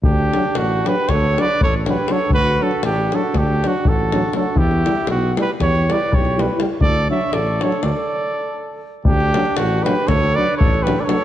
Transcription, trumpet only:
X:1
M:9/8
L:1/16
Q:3/8=80
K:D
V:1 name="Trumpet"
G4 F2 B2 c2 d2 c2 B2 c2 | B2 A2 G2 A2 G2 F2 A4 A2 | G4 F2 B2 c2 d2 c2 B2 z2 | d2 e2 d2 c2 d8 z2 |
G4 F2 B2 c2 d2 c2 B3/2 d/2 c2 |]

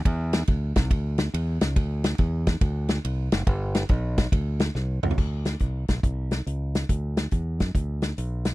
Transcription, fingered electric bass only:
X:1
M:4/4
L:1/8
Q:"Swing" 1/4=140
K:Bphr
V:1 name="Fingered electric bass" clef=bass
E,,2 D,, C,, D,,2 E,, ^C,, | D,,2 E,,2 D,,2 C,, F,,, | G,,,2 B,,,2 D,,2 C,, ^C,, | D,,2 C,, B,,, C,,2 ^C,,2 |
D,,2 E,, F,, D,,2 B,,,2 |]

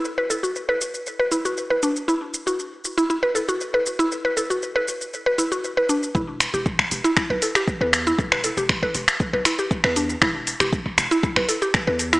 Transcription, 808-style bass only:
X:1
M:4/4
L:1/16
Q:1/4=118
K:Em
V:1 name="808-style bass" clef=bass
z16 | z16 | z16 | E,,,2 z E,,,2 z E,,, z2 B,,, z3 E,,2 z |
E,,,2 z E,,,2 z E,,, z2 B,,, z3 E,,2 z | E,,,2 z E,,,2 z E,,, z2 B,,, z3 E,,2 z |]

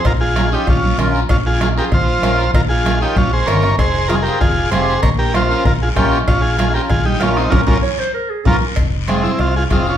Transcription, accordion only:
X:1
M:4/4
L:1/8
Q:1/4=193
K:Bbdor
V:1 name="Accordion"
z2 [DFB] [DFG] z2 [DFB] z | z2 [DFB] [DFA] z2 [DFB] z | z2 [DFB] [DFB] z2 [DFB] z | z2 [CFA] [CFA] z2 [CFG] z |
z2 [DFB] [DFB] z2 [DFB] z | z2 [DFB] [DFB] z2 [DFB] z | [DFB] [DFB] z4 [DFB] z | [K:Fm] z2 [CFA] z3 [CFA] z |]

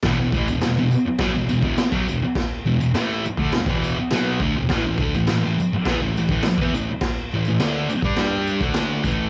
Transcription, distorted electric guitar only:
X:1
M:4/4
L:1/16
Q:1/4=103
K:Em
V:1 name="Distorted electric guitar" clef=bass
[E,,B,,] [E,,B,,] [A,,E,] [E,,B,,] [E,,B,,] [E,,B,,] z2 [B,,F,] [E,,B,,] [E,,B,,] [E,,B,,] z [B,,F,] [E,,B,,] z | z2 [E,,B,,] [E,,B,,] [A,,E,A,]2 z [D,A,] [E,,B,,] [E,,B,,E,]2 z [B,,F,B,]2 [D,A,] [E,,B,,] | [A,,E,] [A,,E,] [D,A,] [A,,E,] [A,,E,] [A,,E,] z2 [E,B,] [A,,E,] [A,,E,] [A,,E,] z [E,B,] [A,,E,] z | z2 [A,,E,] [A,,E,] [D,A,D]2 z [G,D] [G,DG]3 [D,A,D]3 [A,,E,A,]2 |]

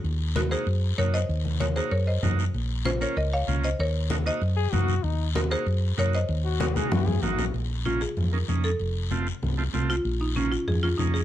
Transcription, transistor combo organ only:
X:1
M:4/4
L:1/8
Q:1/4=192
K:Ebdor
V:1 name="Transistor combo organ"
z2 [B,EG] [B,EG] z2 [B,EG] z | z2 [B,EG] [B,EG] z2 [B,EG] z | z2 [B,DF] [B,DF] z2 [B,DF] z | z2 [B,EG] [B,EG] z2 [B,EG] z |
z2 [B,EG] [B,EG] z2 [B,EG] z | z2 [B,EG] [B,EG] z2 [B,EG] z | [K:Bbm] z2 [B,DF] z2 [B,DE] [B,DE] z | z2 [=A,CF] z2 [A,CF] [A,CF] z |
z2 [B,DF] z2 [B,DF] [B,DE] z |]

